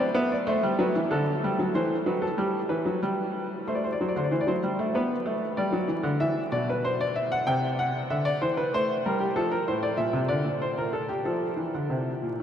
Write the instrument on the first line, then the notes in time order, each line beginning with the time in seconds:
grand piano
0.00 D5
0.14 B3 E5
0.32 D5
0.47 A3 C5
0.63 G3
0.79 F#3 B4
0.95 E3
1.11 D3 A4
1.44 G3
1.59 F#3
1.75 E3 C5
2.06 F#3 B4
2.22 A4
2.38 G3 G4
2.69 E3 B4
2.85 F#3
3.03 G3
3.67 A3 C5
3.75 D5
3.84 C5
3.92 D5
4.01 F#3 C5
4.09 D5
4.16 D3 C5
4.24 D5
4.31 E3 C5
4.41 D5
4.47 F#3 C5
4.63 G3
4.79 A3
4.95 B3 B4
5.26 A3
5.57 G3 D5
5.72 F#3
5.88 E3
6.03 D3
6.20 E3 E5
6.52 B2 D5
6.69 B4
6.84 C5
7.01 D5
7.16 E5
7.32 F#5
7.47 C3 G5
7.79 F#5
8.10 D3 E5
8.25 D5
8.42 E3 C5
8.57 B4
8.74 A3 C5
9.06 G3 A#4
9.20 G4
9.36 F3 A4
9.51 A#4
9.68 A2 C5
9.83 D5
9.97 A#2 E5
10.13 C3
10.28 D3 D5
10.45 A#2
10.62 C5
10.78 A#4
10.93 A4
11.09 G4
11.25 F3 A4
11.56 E3
11.74 D3
11.90 C3
12.23 A#2